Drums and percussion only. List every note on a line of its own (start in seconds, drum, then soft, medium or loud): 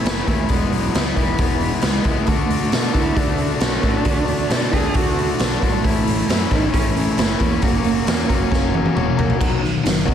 0.06 snare loud
0.06 open hi-hat medium
0.27 kick medium
0.27 open hi-hat soft
0.49 kick medium
0.49 open hi-hat medium
0.72 open hi-hat soft
0.94 snare loud
0.94 open hi-hat medium
1.17 kick medium
1.17 open hi-hat soft
1.38 kick loud
1.38 open hi-hat medium
1.61 open hi-hat soft
1.81 snare loud
1.81 open hi-hat medium
2.04 kick medium
2.04 open hi-hat medium
2.27 kick loud
2.27 open hi-hat medium
2.50 open hi-hat medium
2.72 snare loud
2.72 open hi-hat medium
2.94 kick medium
2.94 open hi-hat medium
3.16 kick loud
3.16 open hi-hat medium
3.38 open hi-hat soft
3.60 snare loud
3.60 open hi-hat medium
3.83 kick medium
3.83 open hi-hat soft
4.05 kick loud
4.05 open hi-hat medium
4.28 open hi-hat soft
4.50 snare loud
4.50 open hi-hat medium
4.73 kick medium
4.73 open hi-hat soft
4.94 kick medium
4.94 open hi-hat medium
5.18 open hi-hat medium
5.39 snare loud
5.39 open hi-hat medium
5.62 kick medium
5.62 open hi-hat medium
5.84 kick loud
5.84 open hi-hat medium
6.07 open hi-hat medium
6.29 snare loud
6.29 open hi-hat medium
6.51 kick medium
6.51 open hi-hat soft
6.74 kick loud
6.74 open hi-hat medium
6.97 open hi-hat medium
7.18 snare loud
7.18 open hi-hat medium
7.39 kick medium
7.39 open hi-hat medium
7.62 kick medium
7.62 open hi-hat medium
7.84 open hi-hat soft
8.07 snare loud
8.07 open hi-hat medium
8.30 kick medium
8.30 open hi-hat soft
8.52 kick loud
8.52 snare medium
8.74 high tom medium
8.86 high tom medium
8.97 mid tom medium
9.19 floor tom medium
9.30 floor tom medium
9.41 kick loud
9.41 crash medium
9.64 snare soft
9.85 snare loud
9.85 open hi-hat medium
10.08 kick medium